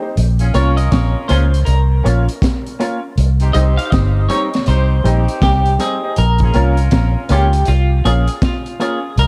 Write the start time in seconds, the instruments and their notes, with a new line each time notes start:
0.01 upright piano C4 D#4 G4 C5
0.17 fingered electric bass A#1, closed hi-hat
0.39 horn section C#4 F4 G#4, closed hi-hat
0.54 fingered electric bass C2, clean electric guitar A#3 C#4 F4 C#5, upright piano C#4 F4 A#4 C#5, horn section C#4 F4 A#4, closed hi-hat
0.77 clean electric guitar D#5, closed hi-hat
0.91 fingered electric bass A#1, clean electric guitar C#5, kick, snare, closed hi-hat
1.28 fingered electric bass C#2, clean electric guitar A#3 C#4 F4 C5, upright piano C#4 F4 A#4 C#5, horn section C#4 F4 G#4, closed hi-hat
1.53 muted clean electric guitar stroke, closed hi-hat
1.65 fingered electric bass C2, clean electric guitar A#4, closed hi-hat
2.03 fingered electric bass A#1, clean electric guitar A#3 C#4 F4, upright piano C#4 F4 A#4 C#5, closed hi-hat
2.29 closed hi-hat
2.42 kick, snare, closed hi-hat
2.67 closed hi-hat
2.79 clean electric guitar A#3 C#4 F4, upright piano C#4 F4 A#4 C#5, closed hi-hat
3.18 fingered electric bass C2, closed hi-hat
3.40 horn section C4 D#4 G4, closed hi-hat
3.53 fingered electric bass C2, clean electric guitar G3 C4 D#4 D#5, upright piano D#4 G4 C5 D#5, horn section D#4 G4 C5, closed hi-hat
3.77 clean electric guitar F5, closed hi-hat
3.85 clean electric guitar F5
3.90 fingered electric bass G1, clean electric guitar D#5, kick, snare, closed hi-hat
4.29 clean electric guitar G3 C4 D#4 C#5, horn section D#4 G4 A#4, upright piano D#4 G4 C5 D#5, closed hi-hat
4.52 muted clean electric guitar stroke, snare, closed hi-hat
4.66 fingered electric bass C2, horn section C4 D#4 G4, clean electric guitar C5, closed hi-hat
5.04 fingered electric bass A#1, clean electric guitar G3 C4 D#4, horn section C4 D#4 G4, upright piano D#4 G4 C5 D#5, closed hi-hat
5.28 upright piano C5 D#5, closed hi-hat
5.42 fingered electric bass C2, clean electric guitar G4, kick, snare, closed hi-hat
5.66 closed hi-hat
5.79 clean electric guitar G3 C4 D#4 G#4, upright piano D#4 G4 C5 D#5, closed hi-hat
6.03 upright piano D#4 G4 C5 D#5
6.16 fingered electric bass A#1, clean electric guitar A#4, closed hi-hat
6.38 horn section C#4 F4 G#4, kick, closed hi-hat
6.54 fingered electric bass C2, clean electric guitar A#3 C#4 F4, upright piano C#4 F4 A#4 C#5, horn section C#4 F4 A#4, closed hi-hat
6.77 closed hi-hat
6.91 fingered electric bass A#1, kick, snare, closed hi-hat
7.29 fingered electric bass C#2, clean electric guitar A#3 C#4 F4 G4, upright piano C#4 F4 A#4 C#5, horn section C#4 F4 G#4, closed hi-hat
7.53 muted clean electric guitar stroke, closed hi-hat
7.65 fingered electric bass C2, clean electric guitar F4, closed hi-hat
8.05 fingered electric bass A#1, clean electric guitar A#3 C#4 F4 G#4, upright piano C#4 F4 A#4 C#5, closed hi-hat
8.28 closed hi-hat
8.42 clean electric guitar F4, kick, snare, closed hi-hat
8.66 closed hi-hat
8.80 clean electric guitar A#3 C#4 F4 G#4, upright piano C#4 F4 A#4 C#5, closed hi-hat
9.18 fingered electric bass C2, clean electric guitar A#4, closed hi-hat